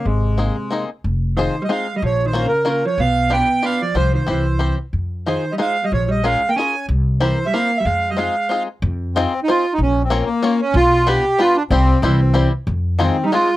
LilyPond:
<<
  \new Staff \with { instrumentName = "Accordion" } { \time 3/4 \key aes \major \tempo 4 = 186 aes2~ aes8 r8 | \key f \minor r4 c''8. ees''16 f''8. ees''16 | \tuplet 3/2 { des''4 c''8~ c''8 bes'4 } bes'8 des''8 | f''4 g''4 f''8 d''8 |
c''8 c''8 c''4. r8 | r4 c''8. ees''16 f''8. ees''16 | des''8 ees''8 f''8. g''16 aes''4 | r4 c''8. e''16 f''8. e''16 |
f''8. ees''16 f''4. r8 | r4 c'8. ees'16 f'8. ees'16 | \tuplet 3/2 { des'4 c'8~ c'8 bes4 } bes8 des'8 | f'4 g'4 f'8 d'8 |
c'4 c'4. r8 | r4 c'8. ees'16 f'8. r16 | }
  \new Staff \with { instrumentName = "Five-string banjo" } { \time 3/4 \key aes \major r4 <bes c' ees' aes'>8 r8 <bes c' ees' aes'>8 r8 | \key f \minor r4 <c' ees' f' aes'>8 r8 <c' ees' f' aes'>8 r8 | r4 <bes des' f' bes'>8 r8 <bes des' f' bes'>8 r8 | r4 <d' f' g' b'>8 r8 <d' f' g' b'>8 r8 |
<c' f' g' c''>4 <c' e' g' c''>8 r8 <c' e' g' c''>8 r8 | r4 <ees' f' aes' c''>8 r8 <ees' f' aes' c''>8 r8 | r4 <des' f' aes' bes'>8 r8 <des' f' aes' bes'>8 r8 | r4 <c' e' g' bes'>8 r8 <c' e' g' bes'>8 r8 |
r4 <c' ees' f' aes'>8 r8 <c' ees' f' aes'>8 r8 | r4 <c' ees' f' aes' c''>8 r8 <c' ees' f' aes' c''>8 r8 | r4 <bes des' f' bes' des''>8 r8 <bes des' f' bes' des''>8 r8 | r4 <b d' f' g' b'>8 r8 <b d' f' g' b'>8 r8 |
<g c' f' g' c''>4 <g c' e' g' c''>8 r8 <g c' e' g' c''>8 r8 | r4 <aes c' ees' f' aes'>8 r8 <aes c' ees' f' aes'>8 r8 | }
  \new Staff \with { instrumentName = "Hollow-body jazz guitar" } { \clef bass \time 3/4 \key aes \major c2~ c8 r8 | \key f \minor r4 ees8. g16 aes8. g16 | \tuplet 3/2 { f4 ees8~ ees8 des4 } des8 f8 | b4 b4 b8 f8 |
f8 ees8 e4. r8 | r4 ees8. g16 aes8. g16 | f8 g8 aes8. bes16 des'4 | r4 e8. g16 bes8. g16 |
aes8. g16 aes4. r8 | r2. | r2. | r2. |
r4 e4. r8 | r4 ees8. g16 aes8. r16 | }
  \new Staff \with { instrumentName = "Upright bass" } { \clef bass \time 3/4 \key aes \major aes,,2 r4 | \key f \minor f,,2 r4 | bes,,2 r4 | b,,2 r4 |
c,4 c,2 | f,2 r4 | bes,,2 r4 | c,2 r4 |
f,2 r4 | f,2 r4 | bes,,2 r4 | b,,2 r4 |
c,4 c,2 | f,2 r4 | }
>>